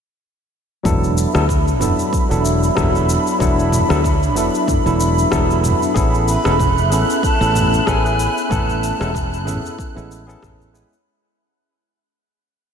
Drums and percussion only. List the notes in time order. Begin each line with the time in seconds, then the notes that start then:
0.85 kick, mid tom, shaker
1.04 shaker
1.18 shaker
1.35 cross-stick, shaker
1.49 kick, shaker
1.68 shaker
1.81 mid tom, shaker
1.99 shaker
2.13 kick, shaker
2.31 shaker
2.45 shaker
2.63 shaker
2.77 kick, cross-stick, mid tom, shaker
2.95 shaker
3.09 shaker
3.27 shaker
3.40 kick, shaker
3.59 shaker
3.72 mid tom, shaker
3.90 cross-stick, shaker
4.04 kick, shaker
4.23 shaker
4.37 shaker
4.55 shaker
4.68 kick, mid tom, shaker
4.87 shaker
5.00 shaker
5.18 shaker
5.32 kick, cross-stick, shaker
5.50 shaker
5.64 mid tom, shaker
5.82 shaker
5.96 kick, shaker
6.14 shaker
6.28 shaker
6.45 cross-stick, shaker
6.59 kick, mid tom, shaker
6.78 shaker
6.92 shaker
7.10 shaker
7.23 kick, shaker
7.42 shaker
7.55 mid tom, shaker
7.74 shaker
7.87 kick, cross-stick, shaker
8.06 shaker
8.20 shaker
8.38 shaker
8.51 kick, mid tom, shaker
8.70 shaker
8.84 shaker
9.01 cross-stick, shaker
9.15 kick, shaker
9.34 shaker
9.47 mid tom, shaker
9.66 shaker
9.79 kick, shaker
9.98 shaker
10.12 shaker
10.29 shaker
10.42 kick, cross-stick, mid tom, shaker
10.61 shaker
10.75 shaker
10.93 shaker